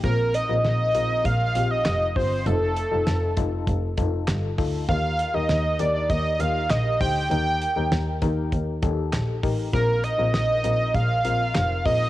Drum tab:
HH |xxxxxxxo|xxxxxxxo|xxxxxxxo|xxxxxxxo|
CP |------x-|------x-|------x-|------x-|
SD |--o---o-|--o---o-|--o---o-|--o---o-|
BD |o---o--o|---ooo-o|o---o--o|---ooo-o|

HH |xxxxxxxo|
CP |------x-|
SD |--o---o-|
BD |o---o--o|